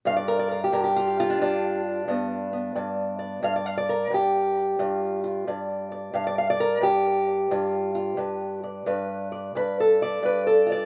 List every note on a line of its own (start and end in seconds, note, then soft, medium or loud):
0.05 0.72 G2 medium
0.05 0.16 F5 loud
0.17 0.38 D5 medium
0.28 0.49 A#4 medium
0.39 0.60 D5 medium
0.51 0.65 A#4 medium
0.64 0.83 G4 medium
0.72 1.41 G2 medium
0.72 0.87 A#4 medium
0.84 1.06 G4 medium
0.96 1.18 F4 medium
1.07 1.81 G4 medium
1.20 2.01 F4 loud
1.30 1.39 D4 medium
1.41 2.07 G2 medium
1.41 3.44 D4 medium
2.08 2.75 G2 medium
2.08 2.52 B3 soft
2.53 3.47 B3 soft
2.75 3.42 G2 medium
2.75 3.18 D5 medium
3.19 3.44 D5 soft
3.43 4.10 G2 medium
3.43 3.55 F5 medium
3.56 3.66 D5 medium
3.66 3.77 F5 medium
3.78 4.07 D5 medium
3.89 4.12 A#4 medium
4.10 4.79 G2 medium
4.10 5.47 G4 medium
4.79 5.47 G2 medium
4.79 5.23 F4 soft
5.24 5.50 F4 soft
5.47 6.13 G2 medium
5.47 5.91 D5 soft
5.92 6.15 D5 soft
6.13 6.81 G2 medium
6.13 6.26 F5 medium
6.27 6.36 D5 medium
6.38 6.50 F5 medium
6.50 6.78 D5 medium
6.60 6.83 A#4 medium
6.81 7.50 G2 medium
6.81 8.62 G4 medium
7.51 8.16 G2 medium
7.51 7.94 F4 medium
7.95 8.16 F4 soft
8.17 8.85 G2 medium
8.17 8.86 B4 soft
8.64 9.31 D5 soft
8.86 9.54 G2 medium
8.86 9.55 B4 medium
9.32 10.01 D5 soft
9.55 10.21 G2 medium
9.55 9.78 B4 medium
9.80 10.24 A4 medium
10.02 10.69 D5 medium
10.23 10.85 G2 medium
10.23 10.46 B4 medium
10.47 10.85 A4 medium
10.66 10.85 F4 soft
10.72 10.85 D5 medium